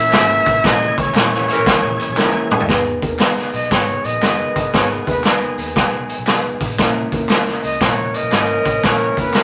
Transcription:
Already playing: A#2 E3 C#4 A#4 E5
0.13 G#1 E3 A#3 C4 E4 G#4, snare, clap, closed hi-hat, tambourine
0.20 C#4
0.46 A1, kick, closed hi-hat, tambourine
0.64 A#1 E3 A#3 C#4 E4 G#4 A#4 D#5, kick, snare, closed hi-hat, tambourine
0.97 C#2 C#5, kick, closed hi-hat, tambourine
1.14 A#1 E3 A#3 C#4 E4 A#4 C#5, snare, clap, closed hi-hat, tambourine
1.33 snare
1.48 E3 C#4 A#4, closed hi-hat, tambourine
1.58 A#1
1.66 E3 A#3 C#4 E4 A#4, kick, snare, closed hi-hat
1.84 A#1
2.00 closed hi-hat, tambourine
2.09 B1
2.17 C#2 E3 A#3 C#4 E4 A#4, snare, clap, tambourine
2.51 A#1, mid tom, tambourine
2.60 G#1, floor tom
2.68 G#1 B3 D#4 G#4 B4, kick, snare, closed hi-hat, tambourine
3.02 D#2 B3 D#4 G#4 A#4, kick, closed hi-hat, tambourine
3.19 B3 D#4 G#4, snare, clap, closed hi-hat, tambourine
3.37 muted picked electric bass stroke, snare
3.53 B1 D#5, closed hi-hat, tambourine
3.62 closed hi-hat
3.70 G#1 D#3 B3 D#4 G#4 B4 C#5, kick, snare, closed hi-hat, tambourine
4.04 A#1 D#5, closed hi-hat, tambourine
4.21 F#1 B3 D#4 G#4 A#4, snare, clap, closed hi-hat, tambourine
4.28 B4
4.56 G1, kick, closed hi-hat, tambourine
4.73 G#1 B3 D#4 G#4 B4 C#5, kick, snare, closed hi-hat, tambourine
5.06 D#2 B3 D#4 G#4 B4, kick, closed hi-hat, tambourine
5.24 B3 D#4 G#4 B4, snare, clap, closed hi-hat, tambourine
5.42 muted picked electric bass stroke
5.58 D#2, closed hi-hat, tambourine
5.67 closed hi-hat
5.76 B1 B3 D#4 G#4 A#4, kick, snare, closed hi-hat, tambourine
5.83 B4
6.09 closed hi-hat, tambourine
6.19 B1
6.27 B3 D#4 G#4 A#4, snare, clap, closed hi-hat, tambourine
6.34 B4
6.60 A1, kick, closed hi-hat, tambourine
6.70 closed hi-hat
6.78 A#1 A#3 C#4 E4 A#4, kick, snare, closed hi-hat, tambourine
7.12 E2 A#3 C#4 E4 A#4, kick, closed hi-hat, tambourine
7.29 A#3 C#4 E4 A#4, snare, clap, closed hi-hat, tambourine
7.46 muted picked electric bass stroke, snare
7.62 C#2 D#5, closed hi-hat, tambourine
7.72 closed hi-hat
7.80 A#1 E3 A#3 C#4 E4 A#4 C#5, kick, snare, closed hi-hat, tambourine
8.14 D#5, closed hi-hat, tambourine
8.23 B1
8.31 G#1 A#3 C#4 E4 A#4, snare, clap, closed hi-hat, tambourine
8.65 A1, kick, closed hi-hat, tambourine
8.83 A#1 A#3 C#4 E4 A#4 C#5, kick, snare, closed hi-hat, tambourine
9.17 E2 A#3 C#4 E4 A#4 B4, kick, closed hi-hat, tambourine
9.33 A#3 C#4 E4 A#4, snare, clap, closed hi-hat, tambourine

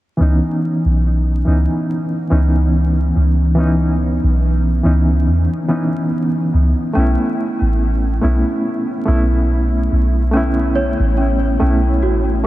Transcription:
0.17 C#2 E3 B3 C#4
0.22 D#4
0.85 B1
1.45 C#2 E3 B3 C#4 D#4
2.30 C#2 E3 B3 C#4 D#4
3.16 C#2
3.55 E3 B3 C#4
3.60 D#4
4.24 B1
4.83 C#2 E3 B3 C#4 D#4
5.27 E2
5.68 E3 B3 C#4 D#4
6.54 C#2
6.93 B1 A3 B3 C#4
6.98 E4
7.61 A1
8.21 B1 A3 B3 C#4 E4
9.06 B1 A3 B3 C#4 E4
9.92 B1
10.31 A3 B3 C#4
10.37 E4
10.75 C#5
11.00 A1
11.18 C#4
11.59 B1 A3 B3 C#4 E4
12.02 A1 F#4
12.44 A3

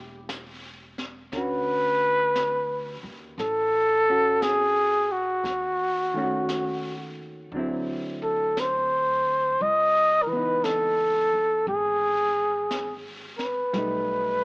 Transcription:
Already playing: E1 G3 A#3 C#4
0.29 brush sweep, snare, hi-hat pedal
0.98 snare
1.32 D2 D3 B4, brush sweep, snare
1.36 C#4 F#4
2.36 brush sweep, snare, hi-hat pedal
3.03 D#2
3.38 A1 A4, brush sweep, snare
4.10 C#4 F#4
4.42 G#4, brush sweep, snare, hi-hat pedal
5.12 F#4
5.44 D#2, brush sweep, snare
6.14 D#3 A3 C#4
6.19 F#4
6.49 brush sweep, snare, hi-hat pedal
7.52 D2 D3 F#3, brush sweep
7.57 C4 E4
8.23 A4
8.57 C5, brush sweep, snare, hi-hat pedal
9.61 C#2 D#5, brush sweep
10.22 A#4
10.27 E3 B4
10.33 B3
10.37 D#4
10.64 A4, brush sweep, snare, hi-hat pedal
11.33 muted upright bass stroke
11.67 G#1 G#4, brush sweep
12.71 brush sweep, snare, hi-hat pedal
13.38 B4, snare
13.73 B1 G3 A3, brush sweep, snare
13.78 D#4

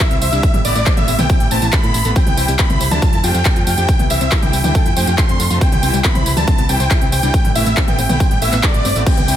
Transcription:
Already playing: E5
0.00 C3 E3 G3 E4, kick
0.11 C2 C3 E3 G3 C4 E4, closed hi-hat
0.22 C2 C5 E5, open hi-hat, tambourine
0.32 C2 C3 E3 G3 D4 E4, closed hi-hat, tambourine
0.43 C3 A3 B3 E4, kick, closed hi-hat, tambourine
0.54 A1 G3, closed hi-hat, mid tom
0.65 A1 C3 A3 B3 E4 D5, open hi-hat, tambourine
0.75 A1 A3, closed hi-hat, tambourine
0.86 C3 A3 B3 C4 E4, kick, clap, closed hi-hat, tambourine
0.97 A1 C3 A3 B3 E4 E5, closed hi-hat, mid tom
1.08 A1 C4, open hi-hat, tambourine
1.19 B1 C3 A3 B3 E4 G5, closed hi-hat, mid tom, tambourine
1.30 C3 A3 B3 C4 E4, kick, closed hi-hat, tambourine
1.40 A1 G3, closed hi-hat
1.51 A1 C3 A3 B3 C4 E4 A5, open hi-hat, tambourine
1.62 A1 E3, closed hi-hat, tambourine
1.73 C3 A3 B3 E4 B5, kick, clap, closed hi-hat, tambourine
1.83 A2 C3 A3 B3 E4, closed hi-hat
1.94 A1 A4, open hi-hat, tambourine
2.05 A1 C3 A3 B3 E4 A4, closed hi-hat, tambourine
2.16 C3 E3 G3 C4 E4 G5, kick, closed hi-hat, tambourine
2.27 C2 B3, closed hi-hat, mid tom
2.37 C2 C3 E3 G3 C4 E4, open hi-hat, tambourine
2.48 C2 G3, closed hi-hat, tambourine
2.59 C3 E3 G3 B3 E4 B5, kick, clap, closed hi-hat, tambourine
2.70 C2 C3 E3 G3 C4 E4, closed hi-hat, mid tom
2.81 C2 C5, open hi-hat, tambourine
2.91 D2 C3 E3 G3 D4 E4 A5, closed hi-hat, mid tom, tambourine
3.02 C3 F3 A3 D4 F4, kick, closed hi-hat, tambourine
3.13 F2 E4, closed hi-hat
3.24 F2 C3 F3 A3 D4 F4 G5, open hi-hat, tambourine
3.34 F2 F5, closed hi-hat, tambourine
3.45 C3 F3 A3 D4 A4, kick, clap, closed hi-hat, tambourine
3.56 F2 C3 F3 A3 D4 F4, closed hi-hat
3.67 F2 F5 G5, open hi-hat, tambourine
3.78 F2 C3 F3 A3 D4 G4, closed hi-hat, tambourine
3.88 C3 E3 G3 E4, kick, closed hi-hat, tambourine
3.99 C2 B3, closed hi-hat, mid tom
4.10 C2 C3 E3 G3 E4 G4 E5, open hi-hat, tambourine
4.21 C2 C4, closed hi-hat, tambourine
4.32 C3 E3 G3 E4, kick, clap, closed hi-hat, tambourine
4.42 C2 C3 E3 G3 D4 E4 G5, closed hi-hat, mid tom
4.53 C2 E4, open hi-hat, tambourine
4.64 D2 C3 E3 G3 D4 E4 G5, closed hi-hat, mid tom, tambourine
4.75 C3 F3 A3 D4 A4, kick, closed hi-hat, tambourine
4.86 F2 E4, closed hi-hat
4.96 F2 C3 F3 A3 D4 C5 G5, open hi-hat, tambourine
5.07 F2 F4, closed hi-hat, tambourine
5.18 C3 F3 A3 D4 F5 C6, kick, clap, closed hi-hat, tambourine
5.29 F2 C3 F3 A3 C4 D4, closed hi-hat
5.40 F2 F4, open hi-hat, tambourine
5.50 F2 C3 F3 A3 D4 F4, closed hi-hat, tambourine
5.61 C3 E3 G3 C4 E4 G5, kick, closed hi-hat, tambourine
5.72 C2 B3, closed hi-hat, mid tom
5.83 C2 C3 E3 G3 C4 E4, open hi-hat, tambourine
5.94 C2 G3, closed hi-hat, tambourine
6.04 C3 E3 G3 B3 E4 B5, kick, clap, closed hi-hat, tambourine
6.15 C2 C3 E3 G3 C4 E4, closed hi-hat, mid tom
6.26 C2 C5, open hi-hat, tambourine
6.37 D2 C3 E3 G3 D4 E4 A5, closed hi-hat, mid tom, tambourine
6.47 C3 E3 G3 C4 E4, kick, closed hi-hat, tambourine
6.58 C2 B3, closed hi-hat
6.69 C2 C3 E3 G3 C4 E4 G5, open hi-hat, tambourine
6.80 C2 C5, closed hi-hat, tambourine
6.90 C3 E3 G3 E4, kick, clap, closed hi-hat, tambourine
7.01 C2 C3 E3 G3 C4 E4, closed hi-hat
7.12 C2 C5 G5, open hi-hat, tambourine
7.23 C2 C3 E3 G3 D4 E4, closed hi-hat, tambourine
7.34 C3 A3 B3 E4, kick, closed hi-hat, tambourine
7.45 A1 G3, closed hi-hat, mid tom
7.55 A1 C3 A3 B3 E4 E5, open hi-hat, tambourine
7.66 A1 A3, closed hi-hat, tambourine
7.77 C3 A3 B3 C4 E4, kick, clap, closed hi-hat, tambourine
7.88 A1 C3 A3 B3 E4 G5, closed hi-hat, mid tom
7.98 A1 C4, open hi-hat, tambourine
8.09 B1 C3 A3 B3 E4 G5, closed hi-hat, mid tom, tambourine
8.20 C3 A3 B3 C4 E4, kick, closed hi-hat, tambourine
8.31 A1 G3, closed hi-hat
8.42 A1 C3 A3 B3 E4 E5, open hi-hat, tambourine
8.53 A1 B3, clap, closed hi-hat, tambourine
8.63 C3 A3 B3 E4 A4 D5, kick, clap, closed hi-hat, tambourine
8.74 A1 C3 A3 B3 E4, closed hi-hat
8.85 G1 C4, open hi-hat, tambourine
8.96 A1 C3 A3 B3 E4, closed hi-hat, tambourine
9.06 C3 E3 G3 C4 E4 G5, kick, closed hi-hat, crash, tambourine
9.17 C2 B3, closed hi-hat, mid tom
9.28 C2 C3 E3 G3 C4 E4, open hi-hat, ride, tambourine

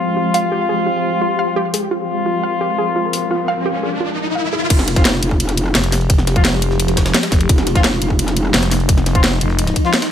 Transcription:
Already playing: F3 G#3 C4 F4 G4 G5
0.17 F4
0.34 F5, open hi-hat
0.52 G4
0.69 G#4
0.87 F4
1.21 F4
1.39 F5
1.56 G4
1.74 G#4, open hi-hat
1.91 F3 C4 F4 A#4, riser
2.26 F4
2.44 F5
2.61 G4
2.78 G#4
2.96 F4
3.13 open hi-hat
3.31 F4
3.48 F5
3.66 G4
3.83 G#4
4.00 F4
4.35 F5
4.53 G#4
4.70 F1 F3 G#3 G4, kick, closed hi-hat, ride, crash
4.79 snare
4.88 snare, closed hi-hat, ride
4.96 F3 C4 F4, kick, snare, closed hi-hat
5.05 snare, closed hi-hat, ride
5.14 snare
5.23 F1, closed hi-hat, ride
5.31 kick
5.40 closed hi-hat, ride
5.49 snare, closed hi-hat
5.57 closed hi-hat, ride
5.75 F1, snare, closed hi-hat, open hi-hat
5.84 snare, closed hi-hat
5.92 snare, open hi-hat, ride
6.01 ride
6.10 kick, closed hi-hat, ride
6.19 snare
6.27 snare, closed hi-hat, ride
6.36 F3 C4 F4, kick, closed hi-hat
6.45 snare, closed hi-hat, ride
6.62 closed hi-hat, ride
6.71 snare
6.80 closed hi-hat, ride
6.88 snare, closed hi-hat
6.97 kick, snare, closed hi-hat, ride
7.06 snare, ride
7.14 snare, closed hi-hat, ride
7.23 snare, closed hi-hat, ride
7.32 F1, kick, snare, open hi-hat, ride
7.41 closed hi-hat
7.49 F1 D#4, kick, closed hi-hat, ride
7.58 snare
7.67 snare, closed hi-hat, ride
7.75 F3 C4 F4, kick, snare, closed hi-hat
7.84 snare, closed hi-hat, ride
7.93 snare
8.02 F1, closed hi-hat, ride
8.10 kick
8.19 closed hi-hat, ride
8.28 snare, closed hi-hat
8.36 closed hi-hat, ride
8.54 F1, snare, closed hi-hat, open hi-hat
8.63 snare, closed hi-hat
8.71 snare, open hi-hat, ride
8.80 ride
8.89 kick, closed hi-hat, ride
8.98 snare
9.06 snare, closed hi-hat, ride
9.15 F3 C4 F4, kick, closed hi-hat
9.24 snare, closed hi-hat, ride
9.41 F1, closed hi-hat, ride
9.50 snare
9.59 closed hi-hat, ride
9.67 snare, closed hi-hat
9.76 kick, closed hi-hat, ride
9.85 F3 C4 F4, snare
9.93 snare, closed hi-hat, ride
10.02 snare, closed hi-hat, ride

